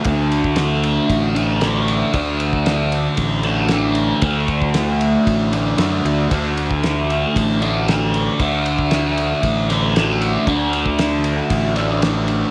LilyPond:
<<
  \new Staff \with { instrumentName = "Distorted electric guitar" } { \time 4/4 \tempo 4 = 115 <d a d'>2~ <d a d'>8 <d a d'>8 <d a d'>4 | <d a d'>2~ <d a d'>8 <d a d'>8 <d a d'>4 | <d a d'>2~ <d a d'>8 <d a d'>8 <d a d'>4 | <d a d'>2~ <d a d'>8 <d a d'>8 <d a d'>4 |
<d a d'>2~ <d a d'>8 <d a d'>8 <d a d'>4 | <d a d'>2~ <d a d'>8 <d a d'>8 <d a d'>4 | }
  \new Staff \with { instrumentName = "Fingered electric bass" } { \clef bass \time 4/4 d,2 a,,2 | d,2 a,,2 | d,2 a,,4 fis,8 d,8 | d,2 a,,2 |
d,2 a,,2 | d,2 a,,2 | }
  \new DrumStaff \with { instrumentName = "Drums" } \drummode { \time 4/4 <bd cymr>8 cymr16 bd16 <cymr sn>8 cymr8 <bd cymr>8 cymr8 <cymr sn>8 cymr8 | <bd cymr>8 cymr16 bd16 <cymr sn>8 cymr8 <bd cymr>8 cymr8 <cymr sn>8 cymr8 | <bd cymr>8 <bd cymr>16 bd16 <cymr sn>8 cymr8 <bd cymr>8 cymr8 <cymr sn>8 cymr8 | <bd cymr>8 cymr16 bd16 <cymr sn>8 cymr8 <bd cymr>8 cymr8 <cymr sn>8 cymr8 |
<bd cymr>8 cymr16 bd16 <cymr sn>8 cymr8 <bd cymr>8 <cymr sn>8 <cymr sn>8 cymr8 | <bd cymr>8 cymr16 bd16 <cymr sn>8 cymr8 <bd cymr>8 <cymr sn>8 <cymr sn>8 cymr8 | }
>>